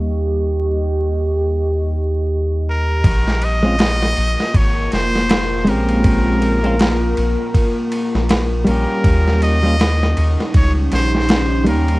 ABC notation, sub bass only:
X:1
M:4/4
L:1/16
Q:"Swing 16ths" 1/4=80
K:Bbdor
V:1 name="Sub bass" clef=bass
E,,16 | B,,,6 B,,, z A,,,2 F,,,4 B,,,2- | B,,,6 B,,, z4 B,,,3 B,,, z | E,,6 E,, z D,,2 B,,,4 E,,2 |]